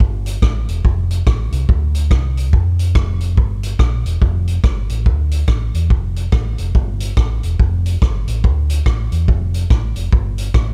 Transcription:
0.00 G1, kick
0.26 closed hi-hat
0.42 A1, kick, cross-stick
0.68 E1, closed hi-hat
0.85 F1, kick
1.11 closed hi-hat
1.27 A1, kick, cross-stick
1.52 C2, closed hi-hat
1.69 D2, kick
1.95 closed hi-hat
2.11 C2, kick, cross-stick
2.37 closed hi-hat
2.53 F2, kick
2.79 closed hi-hat
2.95 F1, kick, cross-stick
3.21 closed hi-hat
3.37 G1, kick
3.63 closed hi-hat
3.79 A#1, kick, cross-stick
4.05 E1, closed hi-hat
4.22 F1, kick
4.48 closed hi-hat
4.64 G1, kick, cross-stick
4.89 A1, closed hi-hat
5.06 D2, kick
5.31 closed hi-hat
5.48 A1, kick, cross-stick
5.74 E2, closed hi-hat
5.90 F1, kick
6.16 closed hi-hat
6.32 A1, kick, cross-stick
6.58 F1, closed hi-hat
6.75 G1, kick
7.00 closed hi-hat
7.17 A1, kick, cross-stick
7.43 E1, closed hi-hat
7.60 F1, kick
7.86 closed hi-hat
8.02 G1, kick, cross-stick
8.27 A1, closed hi-hat
8.44 D2, kick
8.70 closed hi-hat
8.86 A1, kick, cross-stick
9.12 E2, closed hi-hat
9.28 F1, kick
9.54 closed hi-hat
9.70 A1, kick, cross-stick
9.96 F1, closed hi-hat
10.12 G1, kick
10.38 closed hi-hat
10.54 A1, kick, cross-stick

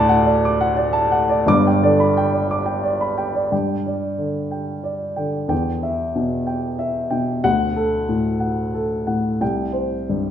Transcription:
Already playing: D2 A2 D5 F#5 A5 D6
0.09 F#5
0.25 D5
0.45 D6
0.61 F#5
0.77 D5
0.93 A5
1.12 F#5
1.29 D5
1.46 G1 G2 D6
1.67 G5
1.83 D3 D5
2.00 B5
2.17 G5
2.33 D5
2.51 D6
2.66 G5
2.84 D5
3.01 B5
3.18 G5
3.35 D5
3.52 G2 G5
3.86 D5
4.18 D3
4.51 G5
4.84 D5
5.16 D3 G5
5.48 E2 G5
5.83 E5
6.15 B2
6.47 G5
6.79 E5
7.11 B2 G5
7.44 D2 F#5
7.76 A4
8.09 A2
8.40 F#5
8.74 A4
9.07 A2 F#5
9.40 C2 G5
9.73 C5
10.09 G2

